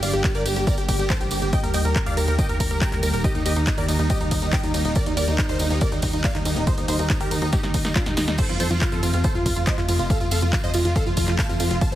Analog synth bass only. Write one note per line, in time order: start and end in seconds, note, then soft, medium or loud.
0.03 0.12 G1 loud
0.13 0.22 G1 medium
0.35 0.44 G1 medium
0.46 0.55 G1 loud
0.56 0.65 G1 medium
0.78 0.87 G1 medium
0.88 0.97 G1 loud
0.99 1.08 G1 medium
1.21 1.30 A1 medium
1.31 1.40 G1 loud
1.42 1.51 G1 loud
1.63 1.72 D#2 medium
1.74 1.83 D#2 loud
1.85 1.94 D#2 medium
2.06 2.15 D#2 medium
2.17 2.26 D#2 loud
2.28 2.37 D#2 medium
2.49 2.58 D#2 medium
2.60 2.69 D#2 loud
2.70 2.80 D#2 medium
2.92 3.01 D#2 medium
3.02 3.12 D#2 loud
3.13 3.22 D#1 loud
3.35 3.44 D#2 medium
3.45 3.55 D#2 loud
3.56 3.65 D#2 medium
3.78 3.87 D#2 medium
3.88 3.97 D#2 loud
3.99 4.08 D#2 medium
4.20 4.30 D#2 medium
4.31 4.40 D#2 loud
4.42 4.51 D#2 medium
4.63 4.72 D#2 medium
4.74 4.83 D#2 loud
4.85 4.94 D#1 medium
5.06 5.15 D#2 medium
5.17 5.26 D#2 loud
5.28 5.37 D#2 loud
5.49 5.58 D#2 medium
5.60 5.69 D#2 loud
5.70 5.80 D#2 medium
5.92 6.01 D#2 medium
6.03 6.12 D#2 loud
6.13 6.22 D#2 medium
6.35 6.44 D#2 medium
6.46 6.55 D#2 loud
6.56 6.65 D#1 medium
6.78 6.87 D#2 medium
6.88 6.97 D#2 loud
6.99 7.08 D#2 loud
7.20 7.30 D#2 medium
7.31 7.40 D#2 loud
7.42 7.51 D#2 medium
7.63 7.72 D#2 medium
7.74 7.83 D#2 loud
7.85 7.94 D#2 medium
8.06 8.15 D#1 medium
8.17 8.26 D#2 loud
8.28 8.37 D#2 medium
8.49 8.58 F2 medium
8.60 8.69 F2 loud
8.71 8.80 F2 medium
8.92 9.01 F2 medium
9.03 9.12 F2 loud
9.13 9.22 F2 medium
9.35 9.44 F2 medium
9.46 9.55 F2 loud
9.56 9.65 F2 medium
9.78 9.87 F2 medium
9.89 9.98 F2 loud
9.99 10.08 F1 loud
10.21 10.30 F2 medium
10.31 10.40 F2 loud
10.42 10.51 F2 medium
10.64 10.73 F2 medium
10.74 10.83 F2 loud
10.85 10.94 F2 medium
11.07 11.15 F2 medium
11.17 11.26 F2 loud
11.28 11.37 F2 medium
11.49 11.58 F2 medium
11.60 11.69 F2 loud
11.71 11.80 F1 loud